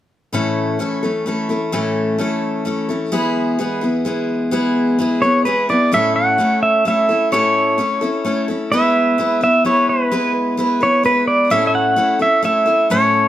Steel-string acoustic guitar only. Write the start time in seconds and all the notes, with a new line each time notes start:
0.33 A2 E3 A3 C#4 E4 A4
0.79 A3 C#4 E4 A4
1.03 A3 C#4 E4 A4
1.26 A3 C#4 E4 A4
1.49 A3 C#4 E4 A4
1.72 A2 E3 A3 C#4 E4 A4
2.18 A3 C#4 E4 A4
2.65 A3 C#4 E4 A4
2.89 A3 C#4 E4 A4
3.12 G#3 B3 E4 G#4
3.59 G#3 B3 E4 G#4
3.81 B3 E4 G#4
4.05 G#3 B3 E4 G#4
4.51 G#3 B3 E4 G#4
4.99 G#3 B3 E4 G#4
5.22 B3 E4 G#4
5.45 G#3 B3 E4 G#4
5.69 B3 E4 G#4
5.92 A2 A3 C#4 E4 A4
6.38 A3 C#4 E4 A4
6.85 A3 C#4 E4 A4
7.09 C#4 E4 A4
7.32 A2 A3 C#4 E4 A4
7.78 A3 C#4 E4 A4
8.01 C#4 E4 A4
8.25 A3 C#4 E4 A4
8.48 C#4 E4 A4
8.72 G#3 B3 E4 B4
9.18 G#3 B3 E4 B4
9.41 B3 E4 B4
9.65 G#3 B3 E4 B4
10.11 G#3 B3 E4 B4
10.57 G#3 B3 E4 B4
10.81 B3 E4 B4
11.03 G#3 B3 E4 B4
11.50 A2 A3 C#4 E4 A4
11.96 A3 C#4 E4 A4
12.19 C#4 E4 A4
12.42 A3 C#4 E4 A4
12.66 C#4 E4 A4
12.90 A2 A3 C#4 E4 A4